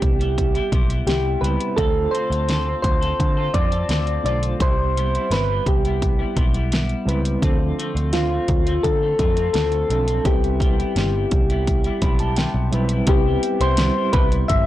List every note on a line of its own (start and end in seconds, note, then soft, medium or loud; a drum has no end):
0.00 0.58 C2 medium
0.00 0.20 G3 soft
0.00 0.20 G3 medium
0.00 0.19 B3 medium
0.00 0.21 C4 medium
0.00 0.18 E4 medium
0.00 0.21 E4 medium
0.00 0.68 G4 medium
0.00 0.22 B4 medium
0.00 kick medium
0.00 closed hi-hat medium
0.19 0.56 G3 soft
0.19 0.55 B3 soft
0.19 0.54 E4 medium
0.19 closed hi-hat soft
0.38 kick medium
0.38 closed hi-hat medium
0.55 0.72 G3 soft
0.55 0.73 B3 soft
0.55 0.72 E4 medium
0.55 closed hi-hat soft
0.72 1.00 B1 medium
0.72 0.90 C3 medium
0.72 0.90 G3 medium
0.72 0.90 B3 medium
0.72 0.89 E4 medium
0.72 kick medium
0.72 closed hi-hat medium
0.90 1.08 G3 soft
0.90 1.08 B3 soft
0.90 1.08 E4 medium
0.90 closed hi-hat soft
1.07 1.35 C2 medium
1.07 1.41 C3 medium
1.07 1.42 G3 medium
1.07 1.43 B3 medium
1.07 1.43 E4 medium
1.07 1.43 G4 medium
1.07 snare loud
1.07 closed hi-hat medium
1.41 1.56 C#2 medium
1.41 1.78 C3 medium
1.41 1.73 G3 medium
1.41 1.78 G3 medium
1.41 1.79 B3 medium
1.41 1.73 C4 medium
1.41 1.74 E4 medium
1.41 1.79 E4 medium
1.41 1.78 B4 medium
1.41 1.74 B4 medium
1.41 closed hi-hat medium
1.60 closed hi-hat medium
1.76 2.06 D2 medium
1.76 2.12 D3 medium
1.76 3.02 A3 medium
1.76 2.13 C4 medium
1.76 3.03 D4 medium
1.76 3.03 F4 medium
1.76 2.14 F4 medium
1.76 2.13 A4 medium
1.76 2.14 A4 medium
1.76 3.03 C5 medium
1.76 kick loud
1.76 closed hi-hat medium
2.11 2.31 D3 medium
2.11 2.31 C4 medium
2.11 2.30 F4 medium
2.11 2.29 A4 medium
2.11 2.79 C5 medium
2.11 closed hi-hat medium
2.30 2.73 D2 medium
2.30 2.48 C4 soft
2.30 2.49 F4 soft
2.30 2.48 A4 soft
2.30 closed hi-hat soft
2.48 2.66 D3 medium
2.48 2.66 C4 medium
2.48 2.66 F4 medium
2.48 2.65 A4 medium
2.48 snare loud
2.48 closed hi-hat medium
2.66 3.02 C4 soft
2.66 3.01 F4 soft
2.66 3.00 A4 soft
2.82 3.12 D2 medium
2.82 3.56 C5 loud
2.82 kick medium
2.82 closed hi-hat medium
3.01 3.38 C4 soft
3.01 3.37 F4 soft
3.01 3.36 A4 soft
3.01 closed hi-hat soft
3.20 3.47 D3 medium
3.20 kick medium
3.20 closed hi-hat medium
3.37 3.54 C4 soft
3.37 3.54 F4 soft
3.37 3.54 A4 soft
3.54 3.82 F2 medium
3.54 3.72 D3 medium
3.54 3.72 C4 medium
3.54 3.71 F4 medium
3.54 3.70 A4 medium
3.54 4.24 D5 medium
3.54 kick medium
3.54 closed hi-hat medium
3.72 3.89 C4 soft
3.72 3.90 F4 soft
3.72 3.89 A4 soft
3.72 closed hi-hat medium
3.89 4.17 D2 medium
3.89 4.25 D3 medium
3.89 4.25 C4 medium
3.89 4.26 F4 medium
3.89 4.25 A4 medium
3.89 snare loud
3.89 closed hi-hat medium
4.07 closed hi-hat soft
4.23 4.53 B1 medium
4.23 4.60 D3 medium
4.23 4.55 A3 medium
4.23 4.55 D4 medium
4.23 4.56 F4 medium
4.23 4.56 C5 medium
4.23 4.40 D5 medium
4.23 closed hi-hat medium
4.27 4.61 C4 medium
4.27 4.62 F4 medium
4.27 4.62 A4 medium
4.43 closed hi-hat medium
4.59 5.17 C2 loud
4.59 4.95 C3 medium
4.59 5.84 G3 medium
4.59 4.96 G3 medium
4.59 5.85 C4 medium
4.59 5.85 E4 medium
4.59 4.97 E4 medium
4.59 5.85 G4 medium
4.59 5.33 C5 loud
4.59 kick loud
4.59 closed hi-hat medium
4.96 5.13 C3 medium
4.96 5.14 G3 medium
4.96 5.14 B3 medium
4.96 5.13 E4 medium
4.96 closed hi-hat medium
5.14 5.31 G3 soft
5.14 5.32 B3 soft
5.14 5.31 E4 medium
5.14 closed hi-hat soft
5.31 5.59 G1 medium
5.31 5.49 C3 medium
5.31 5.49 G3 medium
5.31 5.50 B3 medium
5.31 5.48 E4 medium
5.31 5.64 B4 medium
5.31 snare loud
5.31 closed hi-hat medium
5.50 5.85 G3 soft
5.50 5.85 B3 soft
5.50 5.84 E4 soft
5.66 6.23 C2 medium
5.66 6.34 G4 medium
5.66 kick medium
5.66 closed hi-hat medium
5.85 6.20 G3 soft
5.85 6.19 B3 soft
5.85 6.18 E4 soft
5.85 closed hi-hat soft
6.02 kick medium
6.02 closed hi-hat medium
6.19 6.36 G3 soft
6.19 6.36 B3 soft
6.19 6.37 E4 medium
6.36 6.93 B1 medium
6.36 6.54 C3 medium
6.36 6.54 G3 medium
6.36 6.54 B3 medium
6.36 6.53 E4 medium
6.36 kick medium
6.36 closed hi-hat medium
6.54 6.71 G3 soft
6.54 6.72 B3 medium
6.54 6.72 E4 medium
6.54 closed hi-hat soft
6.72 7.07 G3 medium
6.72 7.08 B3 loud
6.72 7.08 E4 medium
6.72 snare loud
6.72 closed hi-hat medium
6.89 closed hi-hat soft
7.05 7.35 C#2 medium
7.05 7.43 C3 medium
7.05 7.38 G3 medium
7.05 7.43 G3 medium
7.05 7.43 B3 medium
7.05 7.38 C4 medium
7.05 7.39 E4 medium
7.05 7.39 B4 loud
7.05 closed hi-hat medium
7.10 7.44 E4 medium
7.25 closed hi-hat medium
7.41 7.71 D2 loud
7.41 7.77 D3 medium
7.41 8.67 F3 medium
7.41 7.78 A3 medium
7.41 8.67 C4 medium
7.41 7.79 C4 medium
7.41 8.68 D4 medium
7.41 7.79 F4 medium
7.41 8.68 A4 medium
7.41 kick loud
7.41 closed hi-hat medium
7.78 7.96 D3 medium
7.78 7.96 A3 medium
7.78 7.95 C4 medium
7.78 7.94 F4 medium
7.78 closed hi-hat medium
7.95 8.38 D2 medium
7.95 8.12 A3 soft
7.95 8.13 C4 soft
7.95 8.13 F4 soft
7.95 closed hi-hat soft
8.13 8.31 D3 medium
8.13 8.31 A3 medium
8.13 8.31 C4 medium
8.13 8.86 F4 medium
8.13 8.29 F4 medium
8.13 snare loud
8.13 closed hi-hat medium
8.31 8.67 A3 soft
8.31 8.66 C4 soft
8.31 8.65 F4 soft
8.48 8.77 D2 medium
8.48 kick medium
8.48 closed hi-hat medium
8.66 9.03 A3 soft
8.66 9.02 C4 soft
8.66 9.01 F4 soft
8.66 closed hi-hat soft
8.83 9.12 D3 medium
8.83 9.52 A4 medium
8.83 kick medium
8.83 closed hi-hat medium
9.02 9.19 A3 soft
9.02 9.20 C4 soft
9.02 9.19 F4 soft
9.19 9.48 F2 medium
9.19 9.37 D3 medium
9.19 9.37 A3 medium
9.19 9.38 C4 medium
9.19 9.37 F4 medium
9.19 kick medium
9.19 closed hi-hat medium
9.37 9.54 A3 soft
9.37 9.54 C4 soft
9.37 9.55 F4 medium
9.37 closed hi-hat medium
9.53 9.83 D2 medium
9.53 9.89 D3 medium
9.53 9.89 A3 medium
9.53 9.90 C4 medium
9.53 9.91 F4 medium
9.53 10.27 A4 medium
9.53 snare loud
9.53 closed hi-hat medium
9.72 closed hi-hat soft
9.89 10.18 B1 medium
9.89 10.07 D3 medium
9.89 10.21 F3 medium
9.89 10.08 A3 medium
9.89 10.21 C4 medium
9.89 10.08 C4 medium
9.89 10.21 D4 medium
9.89 10.07 F4 medium
9.89 10.22 A4 medium
9.89 closed hi-hat medium
10.08 10.25 A3 soft
10.08 10.26 C4 soft
10.08 10.25 F4 soft
10.08 closed hi-hat medium
10.24 10.82 C2 loud
10.24 10.60 C3 medium
10.24 11.50 G3 medium
10.24 10.60 G3 medium
10.24 10.61 B3 medium
10.24 11.50 C4 medium
10.24 11.51 E4 medium
10.24 10.61 E4 medium
10.24 12.34 G4 medium
10.24 11.51 B4 medium
10.24 kick loud
10.24 closed hi-hat medium
10.44 closed hi-hat soft
10.60 10.78 C3 medium
10.60 10.79 G3 medium
10.60 10.79 B3 medium
10.60 10.78 E4 medium
10.60 kick medium
10.60 closed hi-hat medium
10.79 10.97 G3 soft
10.79 10.97 B3 soft
10.79 10.96 E4 medium
10.79 closed hi-hat soft
10.96 11.24 G1 medium
10.96 11.14 C3 medium
10.96 11.14 G3 medium
10.96 11.14 B3 medium
10.96 11.13 E4 medium
10.96 snare loud
10.96 closed hi-hat medium
11.14 11.50 G3 soft
11.14 11.50 B3 soft
11.14 11.49 E4 medium
11.31 11.88 C2 medium
11.31 kick medium
11.31 closed hi-hat medium
11.50 11.86 G3 soft
11.50 11.85 B3 soft
11.50 11.84 E4 medium
11.50 closed hi-hat soft
11.67 kick medium
11.67 closed hi-hat medium
11.84 12.01 G3 soft
11.84 12.02 B3 soft
11.84 12.02 E4 medium
11.84 closed hi-hat soft
12.02 12.44 B1 medium
12.02 12.20 C3 medium
12.02 12.20 G3 medium
12.02 12.20 B3 medium
12.02 12.19 E4 medium
12.02 12.19 B5 medium
12.02 kick medium
12.02 closed hi-hat medium
12.19 12.37 G3 soft
12.19 12.38 B3 medium
12.19 12.38 E4 medium
12.19 12.36 A5 medium
12.19 closed hi-hat soft
12.36 12.71 C3 medium
12.36 12.72 G3 medium
12.36 12.72 B3 medium
12.36 12.73 E4 medium
12.36 12.70 G5 medium
12.36 snare loud
12.36 closed hi-hat medium
12.54 12.69 B1 medium
12.71 13.01 B1 medium
12.71 12.90 C3 medium
12.71 13.03 G3 medium
12.71 12.90 G3 medium
12.71 12.90 B3 medium
12.71 13.04 C4 medium
12.71 13.04 E4 medium
12.71 12.89 E4 medium
12.71 13.05 B4 medium
12.71 13.05 E5 medium
12.71 closed hi-hat medium
12.89 13.07 G3 soft
12.89 13.08 B3 soft
12.89 13.08 E4 soft
12.89 closed hi-hat medium
13.06 13.36 C2 loud
13.06 13.26 C3 medium
13.06 13.70 G3 medium
13.06 13.26 G3 medium
13.06 13.25 B3 medium
13.06 13.70 C4 medium
13.06 13.15 D#4 medium
13.06 13.24 E4 medium
13.06 13.63 G4 medium
13.06 13.71 B4 medium
13.06 kick loud
13.06 closed hi-hat medium
13.15 13.74 E4 medium
13.25 13.61 G3 soft
13.25 13.61 B3 soft
13.25 13.59 E4 soft
13.43 closed hi-hat medium
13.61 13.89 C2 medium
13.61 13.77 G3 soft
13.61 13.78 B3 soft
13.61 13.78 E4 medium
13.61 14.10 C5 medium
13.61 closed hi-hat soft
13.77 13.96 C3 medium
13.77 14.66 G3 medium
13.77 13.96 G3 medium
13.77 13.95 B3 medium
13.77 14.66 C4 medium
13.77 14.66 E4 medium
13.77 13.94 E4 medium
13.77 14.66 G4 medium
13.77 snare loud
13.77 closed hi-hat medium
13.95 14.13 G3 soft
13.95 14.14 B3 soft
13.95 14.13 E4 medium
14.13 14.42 C2 medium
14.13 14.66 C3 medium
14.13 14.66 G3 medium
14.13 14.66 B3 medium
14.13 14.66 E4 medium
14.13 14.27 B4 loud
14.13 kick medium
14.13 closed hi-hat medium
14.32 closed hi-hat soft
14.48 14.66 G1 medium
14.48 14.66 E5 medium
14.48 kick medium
14.48 closed hi-hat medium